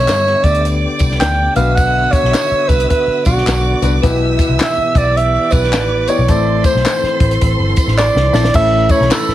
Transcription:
Already playing: upright piano G2, tonewheel organ D3 B3 G4, alto saxophone C#5, violin section E5 E6
0.08 picked electric bass G2, snare, clap, closed hi-hat, tambourine
0.26 snare
0.44 picked electric bass D2, alto saxophone D5, kick, closed hi-hat, tambourine
0.54 closed hi-hat
0.64 violin section D5 D6, closed hi-hat, tambourine
0.99 picked electric bass C2, kick, closed hi-hat, tambourine
1.11 snare
1.20 picked electric bass D2, alto saxophone G5, snare, clap, closed hi-hat, tambourine
1.55 picked electric bass B1, upright piano B2 B3 D4 F#4 B4, tonewheel organ F#4, violin section E5 E6, alto saxophone F5, closed hi-hat, tambourine
1.75 alto saxophone F#5, kick, closed hi-hat, tambourine
2.12 alto saxophone C#5, kick, closed hi-hat, tambourine
2.23 picked electric bass B1, snare
2.34 snare, clap, closed hi-hat, tambourine
2.51 muted picked electric bass stroke
2.68 picked electric bass C2, alto saxophone B4, kick, closed hi-hat, tambourine
2.80 closed hi-hat
2.90 alto saxophone B4, kick, closed hi-hat
3.07 muted picked electric bass stroke
3.25 picked electric bass B1, alto saxophone F#4, violin section D5 D6, kick, closed hi-hat, tambourine
3.37 snare
3.46 picked electric bass B1, snare, clap, closed hi-hat, tambourine
3.82 picked electric bass C2, upright piano B3 D4 F#4 B4, closed hi-hat, tambourine
4.02 picked electric bass B1, upright piano B2 B3 E4 G4 B4, tonewheel organ E3 G4, violin section E5 E6, kick, closed hi-hat, tambourine
4.39 kick, closed hi-hat, tambourine
4.49 picked electric bass C2
4.60 alto saxophone E5, snare, clap, closed hi-hat, tambourine
4.78 muted picked electric bass stroke
4.95 picked electric bass B1, alto saxophone D5, kick, closed hi-hat, tambourine
5.16 violin section D5 D6, alto saxophone E5, closed hi-hat
5.51 picked electric bass B1, alto saxophone B4, kick, closed hi-hat, tambourine
5.63 snare
5.72 picked electric bass A1, snare, clap, closed hi-hat, tambourine
6.07 upright piano B3 E4 G4 D5, alto saxophone C#5, closed hi-hat, tambourine
6.19 picked electric bass B1
6.28 picked electric bass A1, upright piano A2 C4 E4 A4 C5, tonewheel organ C4 A4, violin section C5 C6, alto saxophone D5, kick, closed hi-hat, tambourine
6.64 alto saxophone C5, kick, closed hi-hat, tambourine
6.75 picked electric bass B1, snare
6.86 snare, clap, closed hi-hat, tambourine
7.03 muted picked electric bass stroke, snare
7.20 picked electric bass A1, kick, closed hi-hat
7.31 closed hi-hat
7.41 picked electric bass A1, kick, closed hi-hat
7.59 picked electric bass G1
7.76 kick, closed hi-hat, tambourine
7.87 picked electric bass A1, snare
7.98 alto saxophone D5, snare, clap, tambourine
8.15 picked electric bass C2, snare
8.33 picked electric bass A#1, upright piano C4 E4 A4 D5, alto saxophone D5, snare, tambourine
8.44 snare
8.54 picked electric bass A1, upright piano A2 C#4 E4 A4 C#5 E5, tonewheel organ E3 C#4 A4, violin section B4 B5, alto saxophone E5, kick, crash, tambourine
8.89 alto saxophone C#5, kick, ride, tambourine
9.00 picked electric bass B1, snare
9.11 alto saxophone A4, snare, clap, ride, tambourine
9.29 muted picked electric bass stroke, snare

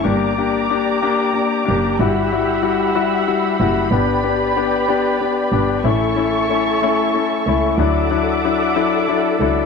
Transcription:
0.04 double bass G1, grand piano A#3 D4 G4, string section G4 D5 A#5 D6
0.38 grand piano A#3 D4 G4
0.70 grand piano A#3 D4 G4
1.02 grand piano A#3 D4 G4
1.33 grand piano A#3 D4 G4
1.65 double bass F#1, grand piano A#3 D4 G4
1.98 double bass G1, grand piano G3 E4 F#4, string section E5 F#5 B5
2.32 grand piano G3 E4 F#4
2.62 grand piano G3 E4 F#4
2.95 grand piano G3 E4 F#4
3.27 grand piano G3 E4 F#4
3.60 double bass F#1, grand piano G3 E4 F#4
3.90 double bass G1, grand piano B3 D4 G4, string section G4 B4 D5
4.23 grand piano B3 D4 G4
4.56 grand piano B3 D4 G4
4.88 grand piano B3 D4 G4
5.21 grand piano B3 D4 G4
5.52 double bass G1, grand piano B3 D4 G4
5.84 double bass A1, grand piano A3 C#4 E4, string section A4 C#5 E5 C#6
6.16 grand piano A3 C#4 E4
6.49 grand piano A3 C#4 E4
6.82 grand piano A3 C#4 E4
7.14 grand piano A3 C#4 E4
7.46 double bass C#2, grand piano A3 C#4 E4
7.78 double bass D2, grand piano F#3 D4 E4, string section A4 E5 F#5 D6
8.11 grand piano F#3 D4 E4
8.44 grand piano F#3 D4 E4
8.76 grand piano F#3 D4 E4
9.08 grand piano F#3 D4 E4
9.40 double bass C#2, grand piano F#3 D4 E4

